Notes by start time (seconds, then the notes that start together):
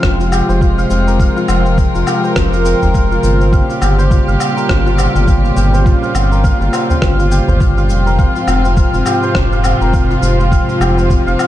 Already playing: C3 F3 G#3 C4 F4 G4 A#4 C5
0.03 F1 F5, kick, cross-stick, shaker
0.20 F4, shaker
0.32 G4, low woodblock, shaker
0.49 F1 C5, shaker
0.61 F4, kick, shaker
0.78 F5, shaker
0.90 F1 C4, shaker
1.07 A#4, shaker
1.19 A#4 F5, kick, shaker
1.36 F4, shaker
1.48 F1 C5, low woodblock, shaker
1.66 C4, shaker
1.78 kick, shaker
1.95 F1 F4, shaker
2.07 G4, low woodblock, shaker
2.24 C5, shaker
2.36 F1, kick, cross-stick, shaker
2.53 F5, shaker
2.65 C4, shaker
2.82 F1 A#4, udu, shaker
2.94 F5, kick, shaker
3.11 F4, shaker
3.23 G1 C5, shaker
3.41 C4, shaker
3.53 A#2 C#3 G3 G4 F5, kick, shaker
3.70 F4, shaker
3.82 G1 G4, low woodblock, shaker
3.99 C5, shaker
4.11 F4, kick, shaker
4.28 G1 F5, shaker
4.40 C4, low woodblock, shaker
4.57 A#4, shaker
4.69 G1 F5, kick, cross-stick, shaker
4.86 F4, shaker
4.98 C5, low woodblock, shaker
5.15 G1 C4, shaker
5.27 F5, kick, shaker
5.44 F4, shaker
5.57 G1 G4, shaker
5.74 C5, shaker
5.85 F4, kick, shaker
6.03 F5, shaker
6.15 G1 C4, low woodblock, shaker
6.32 A#4, shaker
6.44 F5, kick, shaker
6.61 G1 F4, shaker
6.73 C5, low woodblock, shaker
6.90 C4, udu, shaker
7.02 G1 F5, kick, cross-stick, shaker
7.19 F4, shaker
7.31 G4, shaker
7.48 G1 C5, udu, shaker
7.60 F4, kick, shaker
7.77 F5, shaker
7.89 F1 C4, shaker
8.06 A#4, shaker
8.18 G#2 C3 F3 C4 F5, kick, shaker
8.36 F4, shaker
8.48 F1 F4, low woodblock, shaker
8.65 C4, shaker
8.77 F5, kick, shaker
8.94 F1 F4, shaker
9.06 G4, low woodblock, shaker
9.23 C5, shaker
9.35 F1, kick, cross-stick, shaker
9.52 F5, shaker
9.64 C4, low woodblock, shaker
9.81 F1 A#4, shaker
9.94 F5, kick, shaker
10.10 F4, shaker
10.22 F1 F4, shaker
10.40 C4, shaker
10.52 F5, kick, shaker
10.69 F4, shaker
10.80 F1 G4, low woodblock, shaker
10.98 C5, shaker
11.10 F4, kick, shaker
11.27 F1 F5, shaker
11.39 C4, low woodblock, shaker